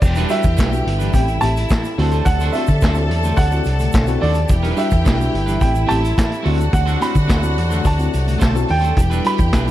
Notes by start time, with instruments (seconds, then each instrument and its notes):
Already playing: grand piano D5
0.01 fingered electric bass E1, french horn section D3 G3 B3 E4, tine electric piano E3, string section G4 G5, muted clean electric guitar stroke, kick, crash, shaker
0.15 clean electric guitar G3 D4 E4 B4, tine electric piano D4 F#4, closed hi-hat, shaker
0.29 clean electric guitar G3 D4 E4 B4, tine electric piano G3 D4 F#4, grand piano E5, closed hi-hat, shaker
0.43 fingered electric bass E2, muted clean electric guitar stroke, kick, closed hi-hat, shaker
0.57 fingered electric bass B1, clean electric guitar G3 D4 E4 B4, kick, snare, clap, shaker
0.71 tine electric piano G3 D4 F#4, muted clean electric guitar stroke, closed hi-hat, shaker
0.86 fingered electric bass G1, muted clean electric guitar stroke, closed hi-hat
0.99 tine electric piano E3, clean electric guitar G3 D4 E4 B4, closed hi-hat, shaker
1.13 fingered electric bass A1, french horn section C3 A3 E4, tine electric piano C4 G4, string section E4 E5, grand piano G5, muted clean electric guitar stroke, kick, closed hi-hat, shaker
1.27 tine electric piano A2 E3, muted clean electric guitar stroke, closed hi-hat, shaker
1.41 fingered electric bass A1, tine electric piano C4 G4, grand piano A5, closed hi-hat, shaker
1.56 muted clean electric guitar stroke, closed hi-hat, shaker
1.69 tine electric piano A2 E3, muted clean electric guitar stroke, kick, snare, clap, shaker
1.84 muted clean electric guitar stroke, closed hi-hat, shaker
1.98 fingered electric bass D2, french horn section F#3 D4, clean electric guitar A3 D4 F#4 C5, tine electric piano C4 E4 F#4, string section A4 A5, open hi-hat
2.11 clean electric guitar A3 D4 F#4 C5, tine electric piano E4 F#4, closed hi-hat, shaker
2.25 fingered electric bass D2, tine electric piano D3 A3, grand piano F#5, muted clean electric guitar stroke, kick, closed hi-hat, shaker
2.40 clean electric guitar A3 D4 F#4 C5, tine electric piano E4 F#4, closed hi-hat, shaker
2.53 clean electric guitar A3 D4 F#4, tine electric piano C4 E4 F#4, grand piano E5, closed hi-hat, shaker
2.57 clean electric guitar C5
2.67 fingered electric bass D3, muted clean electric guitar stroke, kick, closed hi-hat, shaker
2.81 fingered electric bass D2, clean electric guitar A3 D4 F#4 C5, kick, snare, clap, shaker
2.95 tine electric piano C4 E4 F#4, muted clean electric guitar stroke, closed hi-hat, shaker
3.10 fingered electric bass E2, muted clean electric guitar stroke, closed hi-hat
3.23 tine electric piano D3 A3, clean electric guitar A3 D4 F#4 C5, closed hi-hat, shaker
3.37 fingered electric bass D2, grand piano F#5, muted clean electric guitar stroke, kick, closed hi-hat, shaker
3.51 tine electric piano C4 E4 F#4, muted clean electric guitar stroke, closed hi-hat, shaker
3.64 fingered electric bass C2, closed hi-hat, shaker
3.79 tine electric piano D3 A3, muted clean electric guitar stroke, closed hi-hat, shaker
3.92 fingered electric bass B1, tine electric piano D3 A3, kick, snare, clap, shaker
4.07 tine electric piano C4 E4 F#4, muted clean electric guitar stroke, closed hi-hat, shaker
4.20 fingered electric bass D#2, clean electric guitar A3 D4 F#4 C5, tine electric piano E4 F#4, grand piano D5, open hi-hat
4.34 muted clean electric guitar stroke, closed hi-hat, shaker
4.49 fingered electric bass E1, french horn section D3 G3 B3 E4, tine electric piano E3, string section G4 G5, muted clean electric guitar stroke, kick, closed hi-hat, shaker
4.63 clean electric guitar G3 D4 E4 B4, tine electric piano D4 F#4, closed hi-hat, shaker
4.76 clean electric guitar G3 D4 E4 B4, tine electric piano G3 D4 F#4, grand piano E5, closed hi-hat, shaker
4.90 fingered electric bass E2, muted clean electric guitar stroke, kick, closed hi-hat, shaker
5.04 fingered electric bass B1, clean electric guitar G3 D4 E4 B4, kick, snare, shaker
5.08 clap
5.18 tine electric piano G3 D4 F#4, muted clean electric guitar stroke, closed hi-hat, shaker
5.32 fingered electric bass G1, muted clean electric guitar stroke, closed hi-hat
5.46 tine electric piano E3, clean electric guitar G3 D4 E4 B4, closed hi-hat, shaker
5.61 fingered electric bass A1, french horn section C3 A3, tine electric piano C4 G4, string section E4 E5, grand piano G5, kick, closed hi-hat, shaker
5.75 tine electric piano A2 E3, muted clean electric guitar stroke, closed hi-hat, shaker
5.87 fingered electric bass A1, clean electric guitar C4 E4 G4 C5, tine electric piano C4, grand piano A5, closed hi-hat, shaker
5.91 tine electric piano G4
6.01 clean electric guitar C4 E4 G4 C5, closed hi-hat
6.05 shaker
6.18 tine electric piano A2 E3, kick, snare, clap, shaker
6.29 muted clean electric guitar stroke, closed hi-hat
6.33 shaker
6.43 fingered electric bass D2, clean electric guitar A3 D4 F#4 C5, french horn section A3, tine electric piano C4 E4 F#4, string section F#4 F#5, open hi-hat
6.47 french horn section F#3 D4
6.58 tine electric piano E4 F#4, muted clean electric guitar stroke, closed hi-hat, shaker
6.72 fingered electric bass D2, tine electric piano D3 A3, grand piano F#5, muted clean electric guitar stroke, kick, closed hi-hat, shaker
6.86 clean electric guitar A3 D4 F#4 C5, tine electric piano E4 F#4, closed hi-hat, shaker
7.00 clean electric guitar A3 D4 F#4 C5, tine electric piano C4 E4 F#4, grand piano B5, closed hi-hat, shaker
7.15 fingered electric bass D3, muted clean electric guitar stroke, kick, closed hi-hat, shaker
7.27 fingered electric bass D2, clean electric guitar A3 D4 F#4 C5, kick, snare, clap, shaker
7.42 tine electric piano C4 E4 F#4, muted clean electric guitar stroke, closed hi-hat, shaker
7.55 fingered electric bass E2, muted clean electric guitar stroke, closed hi-hat
7.69 tine electric piano D3 A3, clean electric guitar A3 D4 F#4 C5, closed hi-hat, shaker
7.84 fingered electric bass D2, grand piano A5, muted clean electric guitar stroke, kick, closed hi-hat, shaker
7.97 tine electric piano C4 E4 F#4, muted clean electric guitar stroke, closed hi-hat, shaker
8.13 fingered electric bass C2, closed hi-hat, shaker
8.26 tine electric piano D3 A3, muted clean electric guitar stroke, closed hi-hat, shaker
8.38 fingered electric bass B1, tine electric piano D3 A3, clean electric guitar A3 D4 F#4 C5, string section A5, kick, shaker
8.42 string section A4, snare, clap
8.54 tine electric piano C4 E4 F#4, muted clean electric guitar stroke, closed hi-hat, shaker
8.67 fingered electric bass D#2, tine electric piano E4 F#4, grand piano G5, muted clean electric guitar stroke, open hi-hat
8.81 clean electric guitar A3 D4 F#4 C5, closed hi-hat, shaker
8.96 fingered electric bass E1, french horn section D3 G3 B3 E4, tine electric piano E3, string section G4 G5, muted clean electric guitar stroke, kick, closed hi-hat, shaker
9.10 clean electric guitar G3 D4 E4 B4, tine electric piano D4 F#4, closed hi-hat, shaker
9.24 clean electric guitar G3 D4 E4 B4, tine electric piano G3 D4 F#4, grand piano B5, closed hi-hat, shaker
9.38 fingered electric bass E2, muted clean electric guitar stroke, kick, closed hi-hat, shaker
9.53 fingered electric bass B1, clean electric guitar G3 D4 E4 B4, kick, snare, clap, shaker
9.67 tine electric piano G3 D4 F#4, muted clean electric guitar stroke, closed hi-hat